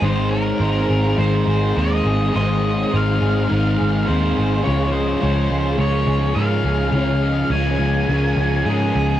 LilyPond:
<<
  \new Staff \with { instrumentName = "Ambient pad" } { \time 4/4 \key aes \mixolydian \tempo 4 = 104 << { <aes' c'''>1~ | <aes' c'''>1 | <aes' aes''>1~ | <aes' aes''>1 | } \\ { f''1~ | f''1~ | f''1~ | f''1 | } >> }
  \new Staff \with { instrumentName = "Lead electric guitar" } { \time 4/4 \key aes \mixolydian c''8 bes'4. c''4 ees''4 | ees''4 f''2 c''4 | des''8 c''4. des''4 f''4 | f''4 aes''2 aes'4 | }
  \new Staff \with { instrumentName = "Clean electric guitar" } { \time 4/4 \key aes \mixolydian c''8 des''8 c''8 aes'8 bes'8 aes'8 bes'8 aes'8 | c''8 des''8 c''8 aes'8 bes'8 aes'8 bes'8 aes'8 | des''8 ees''8 des''8 aes'8 bes'8 aes'8 bes'8 aes'8 | des''8 ees''8 des''8 aes'8 bes'8 aes'8 bes'8 aes'8 | }
  \new Staff \with { instrumentName = "Overdriven electric guitar" } { \time 4/4 \key aes \mixolydian <aes, ees aes c' ees' aes'>4 <aes c' ees' aes'>4 <aes, ees aes c' ees' aes'>8 <aes c' ees' aes'>8 <aes c' ees' aes'>4 | <aes, ees aes c' ees' aes'>4 <aes c' ees' aes'>4 <aes, ees aes c' ees' aes'>8 <aes c' ees' aes'>8 <aes c' ees' aes'>4 | <des aes des' f' aes'>4 <aes des' f' aes'>4 <des aes des' f' aes'>8 <des' f' aes'>8 <aes des' f' aes'>4 | <des aes des' f' aes'>4 <aes des' f' aes'>4 <des aes des' f' aes'>8 <des' f' aes'>8 <aes des' f' aes'>4 | }
  \new Staff \with { instrumentName = "Overdriven electric guitar" } { \clef bass \time 4/4 \key aes \mixolydian <aes, ees aes c' ees'>4 <ees aes c' ees'>4 <aes, ees aes c' ees'>4 <ees aes c' ees'>4 | <aes, ees aes c' ees'>4 <ees aes c' ees'>4 <aes, ees aes c' ees'>4 <ees aes c' ees'>4 | <des f aes des'>4 <des f aes des'>4 <des f aes des'>4 <des f aes des'>4 | <des f aes des'>4 <des f aes des'>4 <des f aes des'>4 <des f aes des'>4 | }
  \new Staff \with { instrumentName = "Picked electric bass" } { \clef bass \time 4/4 \key aes \mixolydian aes,,4 aes,,8 aes,,8 aes,,8 aes,,8 ees,8 aes,,8 | aes,,4 aes,,8 aes,,8 aes,,8 aes,,8 ees,8 aes,,8 | des,4 des,8 des,8 des,8 des,8 aes,8 des,8 | des,4 des,8 des,8 des,8 des,8 aes,8 des,8 | }
>>